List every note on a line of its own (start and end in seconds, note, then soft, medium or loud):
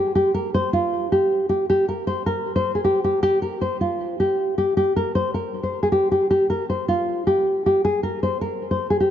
0.00 0.11 G4 medium
0.15 0.30 G4 medium
0.34 0.49 A#4 medium
0.54 0.69 C5 medium
0.73 1.09 F4 medium
1.12 1.48 G4 medium
1.49 1.65 G4 medium
1.70 1.84 G4 loud
1.89 2.03 A#4 medium
2.07 2.22 C5 medium
2.26 2.54 A#4 medium
2.56 2.71 C5 medium
2.75 2.82 G#4 medium
2.84 2.99 G4 medium
3.04 3.19 G4 medium
3.23 3.38 G4 loud
3.42 3.57 A#4 medium
3.61 3.76 C5 medium
3.81 4.17 F4 medium
4.20 4.56 G4 medium
4.58 4.73 G4 medium
4.77 4.92 G4 loud
4.96 5.11 A#4 medium
5.15 5.30 C5 medium
5.34 5.62 A#4 medium
5.63 5.78 C5 medium
5.83 5.90 G#4 medium
5.92 6.07 G4 medium
6.12 6.26 G4 medium
6.31 6.46 G4 loud
6.50 6.65 A#4 medium
6.70 6.84 C5 medium
6.88 7.25 F4 medium
7.27 7.63 G4 medium
7.66 7.81 G4 medium
7.85 8.00 G#4 loud
8.03 8.18 A#4 medium
8.23 8.38 C5 medium
8.41 8.69 A#4 medium
8.71 8.86 C5 medium
8.90 8.98 G#4 medium
9.00 9.11 G4 medium